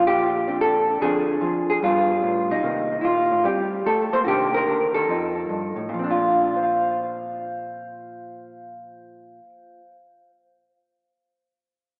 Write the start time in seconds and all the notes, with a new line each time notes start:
Already playing: A#2 F3 C4
0.07 G4
0.47 C4 D4
0.61 A4
1.01 D3 F3 C4 D4 G#4
1.41 F3
1.70 G#4
1.83 G2 G3 B3 D4 F4
2.23 A2
2.50 B2 D#4
2.63 C3 D#3 A#3
3.01 A#2 E4 F4
3.31 A2
3.44 G3 C4 G4
3.86 A3 A4
4.13 A#3 C5
4.25 C3 D#3 A#3 D4 F#4 G4
4.54 A#4
4.67 D3
4.94 D#3 A4
5.08 F2 F3 C4 D#4
5.49 G2
5.76 A2
5.89 A#2
5.94 F3
5.99 C4
6.04 D4
6.11 F4
6.56 C5
6.63 F5